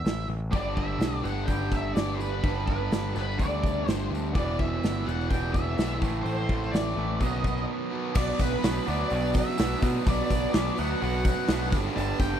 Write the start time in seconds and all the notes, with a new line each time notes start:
Already playing: E5
0.05 A1, snare, open hi-hat
0.28 A1
0.52 G1 G2 D3 G3 B3 D4 D5, kick, open hi-hat
0.56 tambourine
0.76 G1 E5, kick
0.99 B1, snare, open hi-hat, tambourine
1.24 G1 D3 G3 B3 D4 F#5, tambourine
1.28 G2
1.38 tambourine
1.46 G1 G2 D3 G5, kick, open hi-hat, tambourine
1.50 G3
1.71 G1 E5, kick, tambourine
1.95 G1 G2 D3 G3 B3 D4 D5, snare, open hi-hat, tambourine
2.14 B4
2.21 tambourine
2.43 G1 G2 D3 G3 B3 D4, kick, open hi-hat, tambourine
2.67 G1 B4, kick
2.91 G1, snare, open hi-hat, tambourine
3.15 G1 G2 G3 B3 D4 B4, snare, tambourine
3.19 D3
3.31 tambourine
3.38 D2 G2 D3 G3 D5, kick, open hi-hat, tambourine
3.64 kick, tambourine
3.87 G1 G2 D3 G3 B3 D4 C5, snare, open hi-hat, tambourine
4.11 D2
4.15 tambourine
4.27 tambourine
4.33 E1 E2 B2 E3 D5, kick, open hi-hat
4.37 G3 B3 E4, tambourine
4.59 E1 E5, kick
4.83 G1, snare, open hi-hat, tambourine
5.05 E1 G3 B3 E4 F#5, tambourine
5.09 E3
5.21 tambourine
5.29 E1 E2 B2 E3 G5, kick, open hi-hat
5.34 tambourine
5.53 E1 E5, kick, tambourine
5.78 B1 E3 G3 B3 E4, snare, open hi-hat, tambourine
6.00 A1 A2 E3 A3 C4 E4, kick
6.04 tambourine
6.16 tambourine
6.22 A1 C5
6.26 open hi-hat
6.39 tambourine
6.49 A1, kick, tambourine
6.64 tambourine
6.71 A1 A2 E3 A3 C4 E4 D5, snare, open hi-hat
6.75 tambourine
6.88 tambourine
6.96 A1 A2 E3 A3
7.21 B1 B2 D#3 F#3 B3 D#4 D#5, kick, open hi-hat, tambourine
7.44 kick, tambourine
7.58 tambourine
7.90 B2 D#3 F#3 B3 D#4
8.13 B1 B2 F#3 B3 D4 D5, kick, crash
8.17 F#4 B4 D5, tambourine
8.39 B1 B4, kick, open hi-hat, tambourine
8.62 B1 B2 F#3 B3 D4, snare, open hi-hat, tambourine
8.86 D2 B2 F#3 B3 D4 D5, open hi-hat, tambourine
9.10 B1 B2 F#3 B3 D4, open hi-hat, tambourine
9.34 E5, kick, open hi-hat, tambourine
9.58 B1 B2 F#3 B3 D4, snare, open hi-hat, tambourine
9.82 B2 F#3 B3 D4, kick, open hi-hat, tambourine
10.06 B1 B2 F#3 B3 D4 D5, kick, open hi-hat, tambourine
10.30 B1, kick, open hi-hat, tambourine
10.53 B1 B2 F#3 B3 D4, snare, open hi-hat, tambourine
10.76 D2 B2 F#3 B3 D4 F#5, open hi-hat
10.80 tambourine
11.01 B1 B2 F#3 B3 D4 F#5, open hi-hat, tambourine
11.25 kick, open hi-hat, tambourine
11.48 B1 B2 F#3 B3 D4, snare, open hi-hat, tambourine
11.72 G1 G2 D3 G3 B3 D4 G4 B4 D5, kick, open hi-hat, tambourine
11.94 G1 G2 D3 G3 B3 D4 A5, open hi-hat
11.98 tambourine
12.19 G1 G5, kick, open hi-hat, tambourine